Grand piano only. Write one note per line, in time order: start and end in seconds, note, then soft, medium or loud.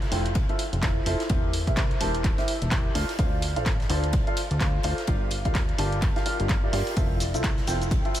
0.11 0.33 E4 medium
0.11 0.33 F4 medium
0.11 0.33 A4 medium
0.11 0.33 C5 medium
0.11 0.33 G5 loud
0.49 0.60 E4 medium
0.49 0.60 F4 medium
0.49 0.60 A4 medium
0.49 0.60 C5 medium
0.49 0.60 E5 loud
0.82 1.03 E4 medium
0.82 1.03 F4 medium
0.82 1.03 A4 medium
0.82 1.03 C5 medium
0.82 1.03 E5 medium
1.06 1.21 E4 medium
1.06 1.21 F4 medium
1.06 1.21 A4 medium
1.06 1.21 C5 medium
1.06 1.21 E5 loud
1.30 1.51 E4 medium
1.30 1.51 G4 medium
1.30 1.51 A#4 medium
1.30 1.51 C5 medium
1.30 1.51 E5 loud
1.67 1.78 E4 medium
1.67 1.78 G4 medium
1.67 1.78 A#4 medium
1.67 1.78 C5 medium
1.67 1.78 E5 loud
2.00 2.22 E4 medium
2.00 2.22 G4 medium
2.00 2.22 A#4 medium
2.00 2.22 C5 medium
2.00 2.22 A5 loud
2.38 2.49 E4 medium
2.38 2.49 G4 medium
2.38 2.49 A#4 medium
2.38 2.49 C5 medium
2.38 2.49 E5 loud
2.72 2.92 G4 medium
2.72 2.92 A#4 medium
2.72 2.92 C5 medium
2.95 3.10 F4 medium
2.95 3.10 A4 medium
2.95 3.10 C5 medium
2.95 3.10 D5 medium
2.95 3.10 F5 loud
3.19 3.40 F4 medium
3.19 3.40 A4 medium
3.19 3.40 C5 medium
3.19 3.40 D5 medium
3.19 3.40 F5 loud
3.56 3.67 F4 medium
3.56 3.67 A4 medium
3.56 3.67 C5 medium
3.56 3.67 D5 medium
3.56 3.67 F5 loud
3.90 4.11 F4 medium
3.90 4.11 A4 medium
3.90 4.11 C5 medium
3.90 4.11 D5 medium
3.90 4.11 A5 medium
4.27 4.38 F4 medium
4.27 4.38 A4 medium
4.27 4.38 C5 medium
4.27 4.38 D5 medium
4.27 4.38 F5 loud
4.60 4.81 F4 medium
4.60 4.81 A4 medium
4.60 4.81 C5 medium
4.60 4.81 D5 medium
4.60 4.81 F5 medium
4.84 4.99 F4 medium
4.84 4.99 A4 medium
4.84 4.99 C5 medium
4.84 4.99 D5 medium
4.84 4.99 F5 loud
5.08 5.29 F4 medium
5.08 5.29 G4 medium
5.08 5.29 A#4 medium
5.08 5.29 D5 medium
5.08 5.29 F5 loud
5.45 5.56 F4 medium
5.45 5.56 G4 medium
5.45 5.56 A#4 medium
5.45 5.56 D5 medium
5.45 5.56 F5 medium
5.79 6.00 F4 medium
5.79 6.00 G4 medium
5.79 6.00 A#4 medium
5.79 6.00 D5 medium
5.79 6.00 A5 loud
6.16 6.24 F4 medium
6.16 6.24 G4 medium
6.16 6.24 A#4 medium
6.16 6.24 D5 medium
6.16 6.24 F5 loud
6.26 6.47 F4 medium
6.26 6.47 G4 medium
6.26 6.47 A#4 medium
6.26 6.47 D5 medium
6.26 6.47 F5 loud
6.63 6.71 F4 medium
6.63 6.71 G4 medium
6.63 6.71 A#4 medium
6.63 6.71 D5 medium
6.63 6.72 E5 medium
6.73 6.94 F4 loud
6.73 6.94 G4 medium
6.73 6.94 A#4 medium
6.73 6.94 D5 medium
6.73 6.94 F5 loud
6.97 7.18 E4 medium
6.97 7.18 F4 medium
6.97 7.18 A4 medium
6.97 7.18 C5 medium
6.97 7.18 E5 loud
7.34 7.45 E4 medium
7.34 7.45 F4 medium
7.34 7.45 A4 medium
7.34 7.45 C5 medium
7.34 7.45 E5 medium
7.67 7.89 E4 medium
7.67 7.89 F4 medium
7.67 7.89 A4 medium
7.67 7.89 C5 medium
7.67 7.89 G5 loud
8.05 8.16 E4 medium
8.05 8.16 F4 medium
8.05 8.16 A4 medium
8.05 8.16 C5 medium
8.05 8.16 E5 loud